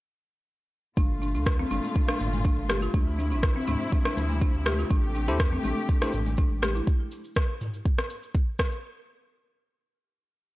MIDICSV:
0, 0, Header, 1, 6, 480
1, 0, Start_track
1, 0, Tempo, 491803
1, 948, Time_signature, 4, 2, 24, 8
1, 10298, End_track
2, 0, Start_track
2, 0, Title_t, "Tine electric piano"
2, 0, Program_c, 0, 4
2, 5155, Note_on_c, 0, 64, 102
2, 5155, Note_on_c, 0, 67, 91
2, 5156, Note_on_c, 0, 69, 90
2, 5156, Note_on_c, 0, 72, 106
2, 5247, Note_off_c, 0, 64, 0
2, 5247, Note_off_c, 0, 67, 0
2, 5248, Note_off_c, 0, 69, 0
2, 5248, Note_off_c, 0, 72, 0
2, 5872, Note_on_c, 0, 64, 76
2, 5873, Note_on_c, 0, 67, 69
2, 5873, Note_on_c, 0, 69, 69
2, 5874, Note_on_c, 0, 72, 82
2, 5966, Note_off_c, 0, 64, 0
2, 5966, Note_off_c, 0, 67, 0
2, 5966, Note_off_c, 0, 69, 0
2, 5967, Note_off_c, 0, 72, 0
2, 10298, End_track
3, 0, Start_track
3, 0, Title_t, "Marimba"
3, 0, Program_c, 1, 12
3, 948, Note_on_c, 1, 62, 86
3, 1061, Note_off_c, 1, 62, 0
3, 1188, Note_on_c, 1, 62, 78
3, 1301, Note_off_c, 1, 62, 0
3, 1316, Note_on_c, 1, 62, 73
3, 1417, Note_off_c, 1, 62, 0
3, 1555, Note_on_c, 1, 60, 105
3, 1616, Note_off_c, 1, 60, 0
3, 1670, Note_on_c, 1, 62, 106
3, 1782, Note_off_c, 1, 62, 0
3, 1910, Note_on_c, 1, 62, 84
3, 2022, Note_off_c, 1, 62, 0
3, 2036, Note_on_c, 1, 62, 102
3, 2096, Note_off_c, 1, 62, 0
3, 2277, Note_on_c, 1, 57, 77
3, 2383, Note_off_c, 1, 57, 0
3, 2388, Note_on_c, 1, 62, 88
3, 2508, Note_off_c, 1, 62, 0
3, 2628, Note_on_c, 1, 67, 106
3, 2741, Note_off_c, 1, 67, 0
3, 2755, Note_on_c, 1, 65, 77
3, 2857, Note_off_c, 1, 65, 0
3, 2870, Note_on_c, 1, 62, 86
3, 2982, Note_off_c, 1, 62, 0
3, 3111, Note_on_c, 1, 62, 82
3, 3223, Note_off_c, 1, 62, 0
3, 3238, Note_on_c, 1, 62, 80
3, 3338, Note_off_c, 1, 62, 0
3, 3473, Note_on_c, 1, 60, 107
3, 3535, Note_off_c, 1, 60, 0
3, 3588, Note_on_c, 1, 62, 105
3, 3701, Note_off_c, 1, 62, 0
3, 3829, Note_on_c, 1, 62, 86
3, 3942, Note_off_c, 1, 62, 0
3, 3955, Note_on_c, 1, 62, 109
3, 4016, Note_off_c, 1, 62, 0
3, 4194, Note_on_c, 1, 57, 79
3, 4302, Note_off_c, 1, 57, 0
3, 4308, Note_on_c, 1, 62, 87
3, 4428, Note_off_c, 1, 62, 0
3, 4547, Note_on_c, 1, 67, 107
3, 4661, Note_off_c, 1, 67, 0
3, 4673, Note_on_c, 1, 65, 82
3, 4775, Note_off_c, 1, 65, 0
3, 4787, Note_on_c, 1, 62, 88
3, 4901, Note_off_c, 1, 62, 0
3, 5026, Note_on_c, 1, 62, 79
3, 5140, Note_off_c, 1, 62, 0
3, 5153, Note_on_c, 1, 62, 78
3, 5256, Note_off_c, 1, 62, 0
3, 5393, Note_on_c, 1, 60, 110
3, 5455, Note_off_c, 1, 60, 0
3, 5508, Note_on_c, 1, 62, 104
3, 5621, Note_off_c, 1, 62, 0
3, 5747, Note_on_c, 1, 62, 83
3, 5861, Note_off_c, 1, 62, 0
3, 5872, Note_on_c, 1, 62, 108
3, 5934, Note_off_c, 1, 62, 0
3, 6113, Note_on_c, 1, 57, 82
3, 6221, Note_off_c, 1, 57, 0
3, 6226, Note_on_c, 1, 62, 87
3, 6347, Note_off_c, 1, 62, 0
3, 6465, Note_on_c, 1, 67, 103
3, 6580, Note_off_c, 1, 67, 0
3, 6590, Note_on_c, 1, 64, 79
3, 6694, Note_off_c, 1, 64, 0
3, 10298, End_track
4, 0, Start_track
4, 0, Title_t, "String section"
4, 0, Program_c, 2, 48
4, 952, Note_on_c, 2, 57, 78
4, 952, Note_on_c, 2, 65, 95
4, 955, Note_on_c, 2, 46, 88
4, 2850, Note_off_c, 2, 57, 0
4, 2850, Note_off_c, 2, 65, 0
4, 2852, Note_off_c, 2, 46, 0
4, 2871, Note_on_c, 2, 53, 78
4, 2872, Note_on_c, 2, 64, 99
4, 2873, Note_on_c, 2, 48, 85
4, 4770, Note_off_c, 2, 53, 0
4, 4771, Note_off_c, 2, 64, 0
4, 4789, Note_on_c, 2, 57, 80
4, 4789, Note_on_c, 2, 67, 95
4, 6672, Note_off_c, 2, 48, 0
4, 6689, Note_off_c, 2, 57, 0
4, 6689, Note_off_c, 2, 67, 0
4, 10298, End_track
5, 0, Start_track
5, 0, Title_t, "Sub bass"
5, 0, Program_c, 3, 38
5, 947, Note_on_c, 3, 31, 102
5, 1313, Note_on_c, 3, 38, 92
5, 1328, Note_off_c, 3, 31, 0
5, 1609, Note_off_c, 3, 38, 0
5, 1665, Note_on_c, 3, 31, 91
5, 1752, Note_off_c, 3, 31, 0
5, 2148, Note_on_c, 3, 31, 95
5, 2450, Note_off_c, 3, 31, 0
5, 2517, Note_on_c, 3, 31, 99
5, 2811, Note_off_c, 3, 31, 0
5, 2868, Note_on_c, 3, 38, 100
5, 3238, Note_on_c, 3, 33, 86
5, 3252, Note_off_c, 3, 38, 0
5, 3532, Note_off_c, 3, 33, 0
5, 3590, Note_on_c, 3, 38, 92
5, 3675, Note_off_c, 3, 38, 0
5, 4069, Note_on_c, 3, 38, 94
5, 4370, Note_off_c, 3, 38, 0
5, 4434, Note_on_c, 3, 38, 96
5, 4730, Note_off_c, 3, 38, 0
5, 4788, Note_on_c, 3, 33, 98
5, 5152, Note_on_c, 3, 40, 92
5, 5166, Note_off_c, 3, 33, 0
5, 5449, Note_off_c, 3, 40, 0
5, 5508, Note_on_c, 3, 33, 89
5, 5594, Note_off_c, 3, 33, 0
5, 5987, Note_on_c, 3, 33, 96
5, 6290, Note_off_c, 3, 33, 0
5, 6353, Note_on_c, 3, 33, 98
5, 6649, Note_off_c, 3, 33, 0
5, 10298, End_track
6, 0, Start_track
6, 0, Title_t, "Drums"
6, 944, Note_on_c, 9, 69, 44
6, 946, Note_on_c, 9, 63, 104
6, 948, Note_on_c, 9, 36, 121
6, 963, Note_on_c, 9, 62, 50
6, 1042, Note_off_c, 9, 69, 0
6, 1044, Note_off_c, 9, 63, 0
6, 1045, Note_off_c, 9, 36, 0
6, 1061, Note_off_c, 9, 62, 0
6, 1194, Note_on_c, 9, 69, 92
6, 1292, Note_off_c, 9, 69, 0
6, 1316, Note_on_c, 9, 69, 52
6, 1318, Note_on_c, 9, 62, 44
6, 1413, Note_off_c, 9, 69, 0
6, 1415, Note_off_c, 9, 62, 0
6, 1419, Note_on_c, 9, 69, 41
6, 1428, Note_on_c, 9, 36, 126
6, 1429, Note_on_c, 9, 37, 92
6, 1517, Note_off_c, 9, 69, 0
6, 1526, Note_off_c, 9, 36, 0
6, 1527, Note_off_c, 9, 37, 0
6, 1556, Note_on_c, 9, 64, 85
6, 1654, Note_off_c, 9, 64, 0
6, 1666, Note_on_c, 9, 63, 90
6, 1666, Note_on_c, 9, 69, 98
6, 1763, Note_off_c, 9, 63, 0
6, 1764, Note_off_c, 9, 69, 0
6, 1794, Note_on_c, 9, 62, 60
6, 1799, Note_on_c, 9, 69, 58
6, 1892, Note_off_c, 9, 62, 0
6, 1896, Note_off_c, 9, 69, 0
6, 1906, Note_on_c, 9, 63, 95
6, 1906, Note_on_c, 9, 69, 43
6, 1909, Note_on_c, 9, 36, 115
6, 2003, Note_off_c, 9, 63, 0
6, 2003, Note_off_c, 9, 69, 0
6, 2007, Note_off_c, 9, 36, 0
6, 2034, Note_on_c, 9, 37, 80
6, 2132, Note_off_c, 9, 37, 0
6, 2148, Note_on_c, 9, 62, 37
6, 2150, Note_on_c, 9, 45, 94
6, 2151, Note_on_c, 9, 69, 93
6, 2246, Note_off_c, 9, 62, 0
6, 2247, Note_off_c, 9, 45, 0
6, 2249, Note_off_c, 9, 69, 0
6, 2272, Note_on_c, 9, 63, 71
6, 2275, Note_on_c, 9, 45, 95
6, 2277, Note_on_c, 9, 69, 48
6, 2370, Note_off_c, 9, 63, 0
6, 2372, Note_off_c, 9, 45, 0
6, 2374, Note_off_c, 9, 69, 0
6, 2386, Note_on_c, 9, 69, 41
6, 2389, Note_on_c, 9, 36, 122
6, 2483, Note_off_c, 9, 69, 0
6, 2487, Note_off_c, 9, 36, 0
6, 2508, Note_on_c, 9, 62, 58
6, 2605, Note_off_c, 9, 62, 0
6, 2621, Note_on_c, 9, 63, 108
6, 2628, Note_on_c, 9, 69, 104
6, 2629, Note_on_c, 9, 64, 87
6, 2631, Note_on_c, 9, 37, 97
6, 2719, Note_off_c, 9, 63, 0
6, 2726, Note_off_c, 9, 69, 0
6, 2727, Note_off_c, 9, 64, 0
6, 2728, Note_off_c, 9, 37, 0
6, 2753, Note_on_c, 9, 69, 59
6, 2851, Note_off_c, 9, 69, 0
6, 2868, Note_on_c, 9, 36, 125
6, 2868, Note_on_c, 9, 62, 58
6, 2870, Note_on_c, 9, 69, 42
6, 2873, Note_on_c, 9, 63, 99
6, 2966, Note_off_c, 9, 36, 0
6, 2966, Note_off_c, 9, 62, 0
6, 2967, Note_off_c, 9, 69, 0
6, 2970, Note_off_c, 9, 63, 0
6, 3102, Note_on_c, 9, 64, 87
6, 3118, Note_on_c, 9, 69, 91
6, 3200, Note_off_c, 9, 64, 0
6, 3215, Note_off_c, 9, 69, 0
6, 3237, Note_on_c, 9, 69, 62
6, 3238, Note_on_c, 9, 62, 40
6, 3334, Note_off_c, 9, 69, 0
6, 3336, Note_off_c, 9, 62, 0
6, 3342, Note_on_c, 9, 69, 46
6, 3348, Note_on_c, 9, 36, 127
6, 3349, Note_on_c, 9, 37, 95
6, 3440, Note_off_c, 9, 69, 0
6, 3446, Note_off_c, 9, 36, 0
6, 3446, Note_off_c, 9, 37, 0
6, 3582, Note_on_c, 9, 69, 101
6, 3584, Note_on_c, 9, 63, 89
6, 3588, Note_on_c, 9, 45, 96
6, 3679, Note_off_c, 9, 69, 0
6, 3682, Note_off_c, 9, 63, 0
6, 3686, Note_off_c, 9, 45, 0
6, 3710, Note_on_c, 9, 69, 51
6, 3716, Note_on_c, 9, 62, 54
6, 3807, Note_off_c, 9, 69, 0
6, 3814, Note_off_c, 9, 62, 0
6, 3829, Note_on_c, 9, 36, 119
6, 3831, Note_on_c, 9, 63, 94
6, 3835, Note_on_c, 9, 69, 38
6, 3926, Note_off_c, 9, 36, 0
6, 3928, Note_off_c, 9, 63, 0
6, 3933, Note_off_c, 9, 69, 0
6, 3956, Note_on_c, 9, 37, 83
6, 4053, Note_off_c, 9, 37, 0
6, 4060, Note_on_c, 9, 63, 72
6, 4066, Note_on_c, 9, 64, 98
6, 4068, Note_on_c, 9, 62, 43
6, 4071, Note_on_c, 9, 69, 100
6, 4157, Note_off_c, 9, 63, 0
6, 4164, Note_off_c, 9, 64, 0
6, 4166, Note_off_c, 9, 62, 0
6, 4169, Note_off_c, 9, 69, 0
6, 4198, Note_on_c, 9, 63, 70
6, 4199, Note_on_c, 9, 69, 52
6, 4296, Note_off_c, 9, 63, 0
6, 4297, Note_off_c, 9, 69, 0
6, 4309, Note_on_c, 9, 36, 127
6, 4310, Note_on_c, 9, 69, 45
6, 4406, Note_off_c, 9, 36, 0
6, 4408, Note_off_c, 9, 69, 0
6, 4435, Note_on_c, 9, 62, 58
6, 4533, Note_off_c, 9, 62, 0
6, 4543, Note_on_c, 9, 69, 109
6, 4545, Note_on_c, 9, 63, 102
6, 4549, Note_on_c, 9, 37, 101
6, 4641, Note_off_c, 9, 69, 0
6, 4643, Note_off_c, 9, 63, 0
6, 4646, Note_off_c, 9, 37, 0
6, 4676, Note_on_c, 9, 69, 56
6, 4773, Note_off_c, 9, 69, 0
6, 4781, Note_on_c, 9, 63, 98
6, 4788, Note_on_c, 9, 36, 127
6, 4791, Note_on_c, 9, 69, 46
6, 4792, Note_on_c, 9, 62, 47
6, 4879, Note_off_c, 9, 63, 0
6, 4885, Note_off_c, 9, 36, 0
6, 4888, Note_off_c, 9, 69, 0
6, 4890, Note_off_c, 9, 62, 0
6, 5026, Note_on_c, 9, 69, 104
6, 5124, Note_off_c, 9, 69, 0
6, 5149, Note_on_c, 9, 62, 40
6, 5159, Note_on_c, 9, 69, 56
6, 5246, Note_off_c, 9, 62, 0
6, 5257, Note_off_c, 9, 69, 0
6, 5263, Note_on_c, 9, 69, 44
6, 5268, Note_on_c, 9, 36, 127
6, 5268, Note_on_c, 9, 37, 98
6, 5361, Note_off_c, 9, 69, 0
6, 5365, Note_off_c, 9, 36, 0
6, 5366, Note_off_c, 9, 37, 0
6, 5390, Note_on_c, 9, 64, 88
6, 5487, Note_off_c, 9, 64, 0
6, 5497, Note_on_c, 9, 63, 102
6, 5510, Note_on_c, 9, 69, 97
6, 5595, Note_off_c, 9, 63, 0
6, 5608, Note_off_c, 9, 69, 0
6, 5638, Note_on_c, 9, 62, 59
6, 5642, Note_on_c, 9, 69, 53
6, 5736, Note_off_c, 9, 62, 0
6, 5740, Note_off_c, 9, 69, 0
6, 5745, Note_on_c, 9, 63, 99
6, 5747, Note_on_c, 9, 36, 123
6, 5749, Note_on_c, 9, 69, 42
6, 5842, Note_off_c, 9, 63, 0
6, 5845, Note_off_c, 9, 36, 0
6, 5846, Note_off_c, 9, 69, 0
6, 5874, Note_on_c, 9, 37, 86
6, 5971, Note_off_c, 9, 37, 0
6, 5977, Note_on_c, 9, 69, 103
6, 5985, Note_on_c, 9, 62, 40
6, 5987, Note_on_c, 9, 45, 90
6, 6074, Note_off_c, 9, 69, 0
6, 6082, Note_off_c, 9, 62, 0
6, 6084, Note_off_c, 9, 45, 0
6, 6110, Note_on_c, 9, 63, 63
6, 6110, Note_on_c, 9, 69, 52
6, 6113, Note_on_c, 9, 45, 90
6, 6208, Note_off_c, 9, 63, 0
6, 6208, Note_off_c, 9, 69, 0
6, 6211, Note_off_c, 9, 45, 0
6, 6216, Note_on_c, 9, 69, 45
6, 6227, Note_on_c, 9, 36, 127
6, 6314, Note_off_c, 9, 69, 0
6, 6325, Note_off_c, 9, 36, 0
6, 6347, Note_on_c, 9, 62, 52
6, 6445, Note_off_c, 9, 62, 0
6, 6468, Note_on_c, 9, 37, 103
6, 6468, Note_on_c, 9, 63, 113
6, 6470, Note_on_c, 9, 64, 93
6, 6473, Note_on_c, 9, 69, 106
6, 6565, Note_off_c, 9, 37, 0
6, 6566, Note_off_c, 9, 63, 0
6, 6567, Note_off_c, 9, 64, 0
6, 6571, Note_off_c, 9, 69, 0
6, 6596, Note_on_c, 9, 69, 56
6, 6693, Note_off_c, 9, 69, 0
6, 6707, Note_on_c, 9, 36, 127
6, 6708, Note_on_c, 9, 69, 42
6, 6805, Note_off_c, 9, 36, 0
6, 6806, Note_off_c, 9, 69, 0
6, 6944, Note_on_c, 9, 69, 106
6, 7041, Note_off_c, 9, 69, 0
6, 7069, Note_on_c, 9, 69, 55
6, 7167, Note_off_c, 9, 69, 0
6, 7176, Note_on_c, 9, 69, 38
6, 7187, Note_on_c, 9, 36, 127
6, 7187, Note_on_c, 9, 37, 101
6, 7274, Note_off_c, 9, 69, 0
6, 7284, Note_off_c, 9, 36, 0
6, 7285, Note_off_c, 9, 37, 0
6, 7427, Note_on_c, 9, 69, 94
6, 7429, Note_on_c, 9, 45, 99
6, 7524, Note_off_c, 9, 69, 0
6, 7527, Note_off_c, 9, 45, 0
6, 7549, Note_on_c, 9, 69, 59
6, 7647, Note_off_c, 9, 69, 0
6, 7663, Note_on_c, 9, 69, 39
6, 7666, Note_on_c, 9, 36, 122
6, 7760, Note_off_c, 9, 69, 0
6, 7764, Note_off_c, 9, 36, 0
6, 7793, Note_on_c, 9, 37, 85
6, 7890, Note_off_c, 9, 37, 0
6, 7904, Note_on_c, 9, 69, 95
6, 8001, Note_off_c, 9, 69, 0
6, 8031, Note_on_c, 9, 69, 51
6, 8128, Note_off_c, 9, 69, 0
6, 8144, Note_on_c, 9, 69, 43
6, 8146, Note_on_c, 9, 36, 127
6, 8241, Note_off_c, 9, 69, 0
6, 8243, Note_off_c, 9, 36, 0
6, 8383, Note_on_c, 9, 69, 110
6, 8385, Note_on_c, 9, 36, 89
6, 8388, Note_on_c, 9, 37, 103
6, 8481, Note_off_c, 9, 69, 0
6, 8483, Note_off_c, 9, 36, 0
6, 8485, Note_off_c, 9, 37, 0
6, 8507, Note_on_c, 9, 69, 58
6, 8604, Note_off_c, 9, 69, 0
6, 10298, End_track
0, 0, End_of_file